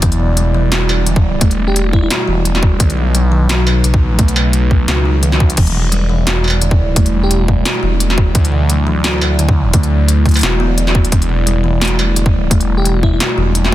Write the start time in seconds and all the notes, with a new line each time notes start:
Already playing: E4 D5
0.02 E1 E3 G3, kick, closed hi-hat
0.12 closed hi-hat
0.20 B2
0.37 G3, closed hi-hat
0.54 E3
0.72 snare, closed hi-hat
0.89 struck metal
1.06 E1 D3, closed hi-hat
1.16 kick
1.41 E1 A3, kick, closed hi-hat
1.51 closed hi-hat
1.68 G4
1.76 closed hi-hat
1.93 E4, kick
2.03 E4
2.10 B2, snare, closed hi-hat
2.28 E1 E3
2.45 closed hi-hat
2.55 snare
2.63 kick
2.80 B1 D#3 F#3 D#4 B4, kick, closed hi-hat
2.90 closed hi-hat
2.97 B2
3.15 F#3, closed hi-hat
3.32 D#3
3.49 snare, closed hi-hat
3.67 struck metal
3.84 B1 C#3, closed hi-hat
3.94 kick
4.19 B1 A3, kick, closed hi-hat
4.28 closed hi-hat
4.36 struck metal
4.53 closed hi-hat
4.71 kick
4.88 C#2 B2, snare, closed hi-hat
5.05 D#4
5.23 D#3, closed hi-hat
5.32 snare
5.40 kick
5.50 closed hi-hat
5.57 E1 E3 G3 E4 D5, kick, closed hi-hat, crash
5.67 closed hi-hat
5.75 B2
5.92 G3, closed hi-hat
6.09 E3
6.27 snare, closed hi-hat
6.44 struck metal
6.48 struck metal
6.50 struck metal
6.62 E1 D3, closed hi-hat
6.71 kick
6.96 E1 A3, kick, closed hi-hat
7.06 closed hi-hat
7.23 G4
7.31 closed hi-hat
7.48 kick
7.65 B2, snare, closed hi-hat
7.83 E1 E3
8.00 closed hi-hat
8.10 snare
8.18 kick
8.35 D2 E3 F#3 E4 D5, kick, closed hi-hat
8.45 closed hi-hat
8.52 B2
8.69 F#3, closed hi-hat
8.87 E3
9.04 snare, closed hi-hat
9.21 struck metal
9.39 D2 D3, closed hi-hat
9.49 kick
9.73 D2 A3, kick, closed hi-hat
9.83 closed hi-hat
10.08 closed hi-hat
10.26 kick, closed hi-hat
10.29 closed hi-hat
10.31 closed hi-hat
10.34 closed hi-hat, struck metal
10.37 closed hi-hat
10.39 closed hi-hat
10.41 E1 B2, snare, closed hi-hat
10.43 closed hi-hat
10.60 B3
10.78 closed hi-hat
10.87 snare
10.95 E3, kick
11.05 closed hi-hat
11.12 E1 E3 G3, kick, closed hi-hat
11.22 closed hi-hat
11.29 B2
11.47 G3, closed hi-hat
11.64 E3
11.81 A3, snare, closed hi-hat
11.85 closed hi-hat
11.87 closed hi-hat
11.99 struck metal
12.16 E1 D3, closed hi-hat
12.26 kick
12.51 E1 A3, kick, closed hi-hat
12.61 closed hi-hat
12.78 G4
12.85 closed hi-hat
13.03 E4, kick
13.13 E4
13.20 B2, snare, closed hi-hat
13.37 E1 E3
13.55 closed hi-hat
13.65 snare